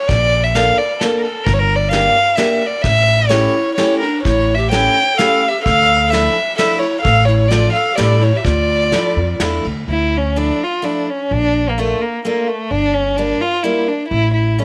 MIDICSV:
0, 0, Header, 1, 6, 480
1, 0, Start_track
1, 0, Key_signature, -1, "minor"
1, 0, Tempo, 459418
1, 96, Time_signature, 3, 2, 24, 8
1, 3456, Tempo, 469484
1, 15048, End_track
2, 0, Start_track
2, 0, Title_t, "Violin"
2, 0, Program_c, 0, 40
2, 85, Note_on_c, 0, 74, 110
2, 455, Note_on_c, 0, 76, 90
2, 470, Note_off_c, 0, 74, 0
2, 573, Note_on_c, 0, 77, 99
2, 588, Note_off_c, 0, 76, 0
2, 813, Note_on_c, 0, 74, 85
2, 829, Note_off_c, 0, 77, 0
2, 1045, Note_on_c, 0, 69, 71
2, 1061, Note_off_c, 0, 74, 0
2, 1232, Note_off_c, 0, 69, 0
2, 1239, Note_on_c, 0, 70, 59
2, 1280, Note_on_c, 0, 69, 72
2, 1296, Note_off_c, 0, 70, 0
2, 1501, Note_on_c, 0, 70, 93
2, 1517, Note_off_c, 0, 69, 0
2, 1602, Note_on_c, 0, 73, 88
2, 1618, Note_off_c, 0, 70, 0
2, 1660, Note_on_c, 0, 70, 98
2, 1676, Note_off_c, 0, 73, 0
2, 1834, Note_on_c, 0, 74, 86
2, 1850, Note_off_c, 0, 70, 0
2, 1975, Note_on_c, 0, 77, 106
2, 1991, Note_off_c, 0, 74, 0
2, 2461, Note_on_c, 0, 76, 88
2, 2476, Note_off_c, 0, 77, 0
2, 2786, Note_on_c, 0, 74, 91
2, 2801, Note_off_c, 0, 76, 0
2, 2942, Note_on_c, 0, 76, 120
2, 2958, Note_off_c, 0, 74, 0
2, 3433, Note_on_c, 0, 73, 100
2, 3449, Note_off_c, 0, 76, 0
2, 3906, Note_off_c, 0, 73, 0
2, 3912, Note_on_c, 0, 73, 85
2, 4155, Note_off_c, 0, 73, 0
2, 4161, Note_on_c, 0, 70, 70
2, 4391, Note_off_c, 0, 70, 0
2, 4397, Note_on_c, 0, 73, 94
2, 4720, Note_on_c, 0, 76, 85
2, 4736, Note_off_c, 0, 73, 0
2, 4887, Note_off_c, 0, 76, 0
2, 4893, Note_on_c, 0, 79, 106
2, 5364, Note_on_c, 0, 77, 90
2, 5380, Note_off_c, 0, 79, 0
2, 5678, Note_on_c, 0, 76, 77
2, 5694, Note_off_c, 0, 77, 0
2, 5833, Note_off_c, 0, 76, 0
2, 5839, Note_on_c, 0, 77, 111
2, 6308, Note_on_c, 0, 76, 94
2, 6324, Note_off_c, 0, 77, 0
2, 6793, Note_off_c, 0, 76, 0
2, 6799, Note_on_c, 0, 76, 87
2, 7016, Note_on_c, 0, 73, 76
2, 7031, Note_off_c, 0, 76, 0
2, 7233, Note_off_c, 0, 73, 0
2, 7239, Note_on_c, 0, 77, 114
2, 7485, Note_on_c, 0, 73, 92
2, 7500, Note_off_c, 0, 77, 0
2, 7722, Note_on_c, 0, 74, 98
2, 7737, Note_off_c, 0, 73, 0
2, 7967, Note_off_c, 0, 74, 0
2, 7974, Note_on_c, 0, 77, 90
2, 8206, Note_on_c, 0, 74, 84
2, 8221, Note_off_c, 0, 77, 0
2, 8481, Note_on_c, 0, 73, 82
2, 8497, Note_off_c, 0, 74, 0
2, 8628, Note_on_c, 0, 76, 71
2, 8643, Note_off_c, 0, 73, 0
2, 8707, Note_on_c, 0, 74, 101
2, 8722, Note_off_c, 0, 76, 0
2, 9680, Note_off_c, 0, 74, 0
2, 10199, Note_on_c, 0, 64, 85
2, 10476, Note_on_c, 0, 61, 76
2, 10492, Note_off_c, 0, 64, 0
2, 10677, Note_on_c, 0, 62, 87
2, 10692, Note_off_c, 0, 61, 0
2, 10947, Note_on_c, 0, 65, 81
2, 10962, Note_off_c, 0, 62, 0
2, 11157, Note_on_c, 0, 62, 72
2, 11172, Note_off_c, 0, 65, 0
2, 11419, Note_on_c, 0, 61, 78
2, 11434, Note_off_c, 0, 62, 0
2, 11643, Note_on_c, 0, 62, 107
2, 11659, Note_off_c, 0, 61, 0
2, 12028, Note_on_c, 0, 58, 70
2, 12043, Note_off_c, 0, 62, 0
2, 12125, Note_on_c, 0, 57, 82
2, 12140, Note_off_c, 0, 58, 0
2, 12357, Note_on_c, 0, 58, 78
2, 12372, Note_off_c, 0, 57, 0
2, 12587, Note_off_c, 0, 58, 0
2, 12603, Note_on_c, 0, 58, 77
2, 12828, Note_on_c, 0, 57, 79
2, 12843, Note_off_c, 0, 58, 0
2, 13065, Note_on_c, 0, 62, 101
2, 13080, Note_off_c, 0, 57, 0
2, 13301, Note_on_c, 0, 61, 84
2, 13316, Note_off_c, 0, 62, 0
2, 13532, Note_on_c, 0, 62, 91
2, 13547, Note_off_c, 0, 61, 0
2, 13785, Note_on_c, 0, 65, 89
2, 13800, Note_off_c, 0, 62, 0
2, 14008, Note_on_c, 0, 64, 77
2, 14023, Note_off_c, 0, 65, 0
2, 14263, Note_on_c, 0, 62, 68
2, 14278, Note_off_c, 0, 64, 0
2, 14467, Note_off_c, 0, 62, 0
2, 14473, Note_on_c, 0, 64, 94
2, 14715, Note_off_c, 0, 64, 0
2, 14730, Note_on_c, 0, 64, 77
2, 14991, Note_on_c, 0, 61, 73
2, 15007, Note_off_c, 0, 64, 0
2, 15048, Note_off_c, 0, 61, 0
2, 15048, End_track
3, 0, Start_track
3, 0, Title_t, "Pan flute"
3, 0, Program_c, 1, 75
3, 3444, Note_on_c, 1, 64, 70
3, 3927, Note_off_c, 1, 64, 0
3, 3933, Note_on_c, 1, 64, 70
3, 4168, Note_off_c, 1, 64, 0
3, 4193, Note_on_c, 1, 62, 56
3, 4399, Note_off_c, 1, 62, 0
3, 4405, Note_on_c, 1, 64, 73
3, 4747, Note_on_c, 1, 67, 63
3, 4763, Note_off_c, 1, 64, 0
3, 4883, Note_off_c, 1, 67, 0
3, 4889, Note_on_c, 1, 73, 70
3, 5345, Note_on_c, 1, 69, 72
3, 5361, Note_off_c, 1, 73, 0
3, 5682, Note_on_c, 1, 67, 66
3, 5698, Note_off_c, 1, 69, 0
3, 5801, Note_off_c, 1, 67, 0
3, 5807, Note_on_c, 1, 69, 98
3, 6283, Note_off_c, 1, 69, 0
3, 6283, Note_on_c, 1, 69, 75
3, 6557, Note_off_c, 1, 69, 0
3, 6781, Note_on_c, 1, 69, 85
3, 7005, Note_on_c, 1, 64, 71
3, 7020, Note_off_c, 1, 69, 0
3, 7235, Note_off_c, 1, 64, 0
3, 7241, Note_on_c, 1, 69, 85
3, 7505, Note_on_c, 1, 64, 73
3, 7520, Note_off_c, 1, 69, 0
3, 7732, Note_on_c, 1, 65, 68
3, 7747, Note_off_c, 1, 64, 0
3, 7970, Note_off_c, 1, 65, 0
3, 7976, Note_on_c, 1, 69, 79
3, 8201, Note_on_c, 1, 67, 84
3, 8216, Note_off_c, 1, 69, 0
3, 8457, Note_on_c, 1, 64, 71
3, 8473, Note_off_c, 1, 67, 0
3, 8601, Note_on_c, 1, 67, 53
3, 8616, Note_off_c, 1, 64, 0
3, 8693, Note_on_c, 1, 65, 83
3, 8709, Note_off_c, 1, 67, 0
3, 9673, Note_off_c, 1, 65, 0
3, 15048, End_track
4, 0, Start_track
4, 0, Title_t, "Steel-string acoustic guitar"
4, 0, Program_c, 2, 25
4, 573, Note_on_c, 2, 58, 48
4, 577, Note_on_c, 2, 62, 50
4, 581, Note_on_c, 2, 65, 48
4, 586, Note_on_c, 2, 69, 55
4, 824, Note_off_c, 2, 62, 0
4, 825, Note_off_c, 2, 58, 0
4, 828, Note_off_c, 2, 65, 0
4, 830, Note_off_c, 2, 69, 0
4, 1060, Note_on_c, 2, 58, 59
4, 1068, Note_on_c, 2, 62, 48
4, 1074, Note_on_c, 2, 65, 54
4, 1074, Note_on_c, 2, 69, 60
4, 1304, Note_off_c, 2, 58, 0
4, 1308, Note_off_c, 2, 62, 0
4, 1309, Note_off_c, 2, 65, 0
4, 1311, Note_off_c, 2, 69, 0
4, 1994, Note_on_c, 2, 58, 51
4, 2000, Note_on_c, 2, 62, 44
4, 2009, Note_on_c, 2, 65, 51
4, 2016, Note_on_c, 2, 67, 56
4, 2248, Note_off_c, 2, 58, 0
4, 2250, Note_off_c, 2, 62, 0
4, 2255, Note_off_c, 2, 65, 0
4, 2256, Note_off_c, 2, 67, 0
4, 2478, Note_on_c, 2, 58, 57
4, 2480, Note_on_c, 2, 62, 49
4, 2486, Note_on_c, 2, 65, 58
4, 2494, Note_on_c, 2, 67, 73
4, 2733, Note_off_c, 2, 62, 0
4, 2734, Note_off_c, 2, 58, 0
4, 2737, Note_off_c, 2, 65, 0
4, 2741, Note_off_c, 2, 67, 0
4, 3439, Note_on_c, 2, 57, 57
4, 3449, Note_on_c, 2, 61, 42
4, 3451, Note_on_c, 2, 67, 68
4, 3458, Note_on_c, 2, 64, 44
4, 3694, Note_off_c, 2, 57, 0
4, 3699, Note_off_c, 2, 61, 0
4, 3701, Note_off_c, 2, 64, 0
4, 3701, Note_off_c, 2, 67, 0
4, 3937, Note_on_c, 2, 57, 53
4, 3944, Note_on_c, 2, 61, 46
4, 3944, Note_on_c, 2, 67, 59
4, 3954, Note_on_c, 2, 64, 46
4, 4188, Note_off_c, 2, 57, 0
4, 4189, Note_off_c, 2, 61, 0
4, 4193, Note_off_c, 2, 64, 0
4, 4193, Note_off_c, 2, 67, 0
4, 4893, Note_on_c, 2, 57, 56
4, 4899, Note_on_c, 2, 61, 49
4, 4905, Note_on_c, 2, 67, 59
4, 4909, Note_on_c, 2, 64, 45
4, 5149, Note_off_c, 2, 57, 0
4, 5151, Note_off_c, 2, 61, 0
4, 5154, Note_off_c, 2, 64, 0
4, 5155, Note_off_c, 2, 67, 0
4, 5378, Note_on_c, 2, 57, 62
4, 5385, Note_on_c, 2, 61, 51
4, 5393, Note_on_c, 2, 67, 63
4, 5394, Note_on_c, 2, 64, 49
4, 5628, Note_off_c, 2, 57, 0
4, 5632, Note_off_c, 2, 61, 0
4, 5634, Note_off_c, 2, 64, 0
4, 5636, Note_off_c, 2, 67, 0
4, 6331, Note_on_c, 2, 53, 54
4, 6341, Note_on_c, 2, 57, 55
4, 6344, Note_on_c, 2, 62, 42
4, 6345, Note_on_c, 2, 64, 61
4, 6580, Note_off_c, 2, 53, 0
4, 6584, Note_off_c, 2, 62, 0
4, 6586, Note_off_c, 2, 57, 0
4, 6587, Note_off_c, 2, 64, 0
4, 6804, Note_on_c, 2, 53, 61
4, 6810, Note_on_c, 2, 57, 56
4, 6815, Note_on_c, 2, 64, 76
4, 6818, Note_on_c, 2, 62, 48
4, 7052, Note_off_c, 2, 53, 0
4, 7055, Note_off_c, 2, 57, 0
4, 7056, Note_off_c, 2, 62, 0
4, 7057, Note_off_c, 2, 64, 0
4, 7748, Note_on_c, 2, 53, 54
4, 7755, Note_on_c, 2, 57, 47
4, 7763, Note_on_c, 2, 62, 48
4, 7767, Note_on_c, 2, 65, 63
4, 7999, Note_off_c, 2, 53, 0
4, 8003, Note_off_c, 2, 57, 0
4, 8005, Note_off_c, 2, 62, 0
4, 8009, Note_off_c, 2, 65, 0
4, 8228, Note_on_c, 2, 55, 67
4, 8232, Note_on_c, 2, 57, 59
4, 8240, Note_on_c, 2, 62, 51
4, 8242, Note_on_c, 2, 64, 73
4, 8478, Note_off_c, 2, 55, 0
4, 8481, Note_off_c, 2, 57, 0
4, 8483, Note_off_c, 2, 62, 0
4, 8485, Note_off_c, 2, 64, 0
4, 9196, Note_on_c, 2, 53, 52
4, 9204, Note_on_c, 2, 57, 39
4, 9205, Note_on_c, 2, 62, 53
4, 9214, Note_on_c, 2, 64, 57
4, 9447, Note_off_c, 2, 53, 0
4, 9448, Note_off_c, 2, 57, 0
4, 9450, Note_off_c, 2, 62, 0
4, 9455, Note_off_c, 2, 64, 0
4, 9685, Note_on_c, 2, 53, 59
4, 9689, Note_on_c, 2, 57, 59
4, 9695, Note_on_c, 2, 62, 53
4, 9697, Note_on_c, 2, 64, 69
4, 9939, Note_off_c, 2, 53, 0
4, 9942, Note_off_c, 2, 57, 0
4, 9942, Note_off_c, 2, 62, 0
4, 9945, Note_off_c, 2, 64, 0
4, 10668, Note_on_c, 2, 53, 45
4, 10671, Note_on_c, 2, 57, 42
4, 10679, Note_on_c, 2, 64, 56
4, 10682, Note_on_c, 2, 62, 39
4, 10915, Note_off_c, 2, 53, 0
4, 10918, Note_off_c, 2, 57, 0
4, 10920, Note_off_c, 2, 62, 0
4, 10921, Note_off_c, 2, 64, 0
4, 11139, Note_on_c, 2, 53, 50
4, 11140, Note_on_c, 2, 57, 45
4, 11149, Note_on_c, 2, 62, 40
4, 11153, Note_on_c, 2, 64, 52
4, 11392, Note_off_c, 2, 53, 0
4, 11395, Note_off_c, 2, 57, 0
4, 11396, Note_off_c, 2, 62, 0
4, 11399, Note_off_c, 2, 64, 0
4, 12116, Note_on_c, 2, 57, 43
4, 12122, Note_on_c, 2, 58, 45
4, 12126, Note_on_c, 2, 62, 42
4, 12130, Note_on_c, 2, 65, 53
4, 12360, Note_off_c, 2, 57, 0
4, 12362, Note_off_c, 2, 62, 0
4, 12363, Note_off_c, 2, 58, 0
4, 12366, Note_off_c, 2, 65, 0
4, 12595, Note_on_c, 2, 57, 49
4, 12601, Note_on_c, 2, 58, 53
4, 12610, Note_on_c, 2, 62, 46
4, 12613, Note_on_c, 2, 65, 58
4, 12837, Note_off_c, 2, 57, 0
4, 12841, Note_off_c, 2, 58, 0
4, 12843, Note_off_c, 2, 62, 0
4, 12846, Note_off_c, 2, 65, 0
4, 13547, Note_on_c, 2, 55, 54
4, 13554, Note_on_c, 2, 58, 35
4, 13554, Note_on_c, 2, 62, 48
4, 13559, Note_on_c, 2, 65, 54
4, 13789, Note_off_c, 2, 55, 0
4, 13789, Note_off_c, 2, 58, 0
4, 13792, Note_off_c, 2, 62, 0
4, 13794, Note_off_c, 2, 65, 0
4, 14016, Note_on_c, 2, 55, 56
4, 14020, Note_on_c, 2, 58, 54
4, 14025, Note_on_c, 2, 62, 50
4, 14031, Note_on_c, 2, 65, 57
4, 14264, Note_off_c, 2, 55, 0
4, 14267, Note_off_c, 2, 58, 0
4, 14269, Note_off_c, 2, 62, 0
4, 14272, Note_off_c, 2, 65, 0
4, 14985, Note_on_c, 2, 55, 46
4, 14992, Note_on_c, 2, 57, 44
4, 14995, Note_on_c, 2, 61, 34
4, 14998, Note_on_c, 2, 64, 45
4, 15048, Note_off_c, 2, 55, 0
4, 15048, Note_off_c, 2, 57, 0
4, 15048, Note_off_c, 2, 61, 0
4, 15048, Note_off_c, 2, 64, 0
4, 15048, End_track
5, 0, Start_track
5, 0, Title_t, "Upright bass"
5, 0, Program_c, 3, 32
5, 97, Note_on_c, 3, 34, 83
5, 721, Note_off_c, 3, 34, 0
5, 1531, Note_on_c, 3, 31, 85
5, 2152, Note_off_c, 3, 31, 0
5, 2969, Note_on_c, 3, 33, 83
5, 3600, Note_off_c, 3, 33, 0
5, 4418, Note_on_c, 3, 33, 78
5, 5046, Note_off_c, 3, 33, 0
5, 5859, Note_on_c, 3, 38, 87
5, 6478, Note_off_c, 3, 38, 0
5, 7283, Note_on_c, 3, 33, 88
5, 7901, Note_off_c, 3, 33, 0
5, 8235, Note_on_c, 3, 33, 98
5, 8546, Note_off_c, 3, 33, 0
5, 8715, Note_on_c, 3, 38, 87
5, 9190, Note_off_c, 3, 38, 0
5, 9442, Note_on_c, 3, 41, 72
5, 9657, Note_off_c, 3, 41, 0
5, 9682, Note_on_c, 3, 40, 71
5, 9912, Note_off_c, 3, 40, 0
5, 9943, Note_on_c, 3, 38, 63
5, 10155, Note_off_c, 3, 38, 0
5, 10174, Note_on_c, 3, 38, 74
5, 10805, Note_off_c, 3, 38, 0
5, 11638, Note_on_c, 3, 34, 76
5, 12258, Note_off_c, 3, 34, 0
5, 13067, Note_on_c, 3, 31, 77
5, 13685, Note_off_c, 3, 31, 0
5, 14500, Note_on_c, 3, 33, 82
5, 14975, Note_off_c, 3, 33, 0
5, 15048, End_track
6, 0, Start_track
6, 0, Title_t, "Drums"
6, 93, Note_on_c, 9, 36, 76
6, 93, Note_on_c, 9, 51, 44
6, 197, Note_off_c, 9, 51, 0
6, 198, Note_off_c, 9, 36, 0
6, 577, Note_on_c, 9, 38, 61
6, 577, Note_on_c, 9, 51, 39
6, 682, Note_off_c, 9, 38, 0
6, 682, Note_off_c, 9, 51, 0
6, 1054, Note_on_c, 9, 38, 67
6, 1054, Note_on_c, 9, 51, 41
6, 1159, Note_off_c, 9, 38, 0
6, 1159, Note_off_c, 9, 51, 0
6, 1298, Note_on_c, 9, 51, 35
6, 1403, Note_off_c, 9, 51, 0
6, 1531, Note_on_c, 9, 36, 71
6, 1533, Note_on_c, 9, 51, 45
6, 1635, Note_off_c, 9, 36, 0
6, 1637, Note_off_c, 9, 51, 0
6, 2014, Note_on_c, 9, 38, 60
6, 2014, Note_on_c, 9, 51, 46
6, 2118, Note_off_c, 9, 38, 0
6, 2118, Note_off_c, 9, 51, 0
6, 2485, Note_on_c, 9, 38, 61
6, 2485, Note_on_c, 9, 51, 45
6, 2590, Note_off_c, 9, 38, 0
6, 2590, Note_off_c, 9, 51, 0
6, 2729, Note_on_c, 9, 51, 41
6, 2834, Note_off_c, 9, 51, 0
6, 2961, Note_on_c, 9, 51, 44
6, 2967, Note_on_c, 9, 36, 79
6, 3066, Note_off_c, 9, 51, 0
6, 3072, Note_off_c, 9, 36, 0
6, 3452, Note_on_c, 9, 38, 55
6, 3452, Note_on_c, 9, 51, 44
6, 3554, Note_off_c, 9, 38, 0
6, 3554, Note_off_c, 9, 51, 0
6, 3936, Note_on_c, 9, 38, 56
6, 3936, Note_on_c, 9, 51, 46
6, 4038, Note_off_c, 9, 38, 0
6, 4038, Note_off_c, 9, 51, 0
6, 4185, Note_on_c, 9, 51, 37
6, 4287, Note_off_c, 9, 51, 0
6, 4420, Note_on_c, 9, 51, 37
6, 4421, Note_on_c, 9, 36, 73
6, 4523, Note_off_c, 9, 36, 0
6, 4523, Note_off_c, 9, 51, 0
6, 4904, Note_on_c, 9, 38, 59
6, 4904, Note_on_c, 9, 51, 36
6, 5006, Note_off_c, 9, 38, 0
6, 5006, Note_off_c, 9, 51, 0
6, 5382, Note_on_c, 9, 38, 62
6, 5382, Note_on_c, 9, 51, 41
6, 5485, Note_off_c, 9, 38, 0
6, 5485, Note_off_c, 9, 51, 0
6, 5633, Note_on_c, 9, 51, 38
6, 5735, Note_off_c, 9, 51, 0
6, 5859, Note_on_c, 9, 36, 67
6, 5861, Note_on_c, 9, 51, 45
6, 5962, Note_off_c, 9, 36, 0
6, 5963, Note_off_c, 9, 51, 0
6, 6343, Note_on_c, 9, 38, 55
6, 6343, Note_on_c, 9, 51, 40
6, 6445, Note_off_c, 9, 38, 0
6, 6445, Note_off_c, 9, 51, 0
6, 6810, Note_on_c, 9, 38, 67
6, 6810, Note_on_c, 9, 51, 51
6, 6912, Note_off_c, 9, 38, 0
6, 6912, Note_off_c, 9, 51, 0
6, 7049, Note_on_c, 9, 51, 46
6, 7152, Note_off_c, 9, 51, 0
6, 7278, Note_on_c, 9, 51, 39
6, 7280, Note_on_c, 9, 36, 71
6, 7380, Note_off_c, 9, 51, 0
6, 7383, Note_off_c, 9, 36, 0
6, 7754, Note_on_c, 9, 38, 56
6, 7754, Note_on_c, 9, 51, 43
6, 7856, Note_off_c, 9, 38, 0
6, 7856, Note_off_c, 9, 51, 0
6, 8231, Note_on_c, 9, 38, 66
6, 8231, Note_on_c, 9, 51, 45
6, 8333, Note_off_c, 9, 38, 0
6, 8333, Note_off_c, 9, 51, 0
6, 8480, Note_on_c, 9, 51, 40
6, 8582, Note_off_c, 9, 51, 0
6, 8703, Note_on_c, 9, 51, 40
6, 8710, Note_on_c, 9, 36, 75
6, 8805, Note_off_c, 9, 51, 0
6, 8812, Note_off_c, 9, 36, 0
6, 9194, Note_on_c, 9, 38, 51
6, 9194, Note_on_c, 9, 51, 43
6, 9296, Note_off_c, 9, 38, 0
6, 9296, Note_off_c, 9, 51, 0
6, 9682, Note_on_c, 9, 38, 60
6, 9682, Note_on_c, 9, 51, 41
6, 9784, Note_off_c, 9, 38, 0
6, 9784, Note_off_c, 9, 51, 0
6, 9935, Note_on_c, 9, 51, 40
6, 10037, Note_off_c, 9, 51, 0
6, 15048, End_track
0, 0, End_of_file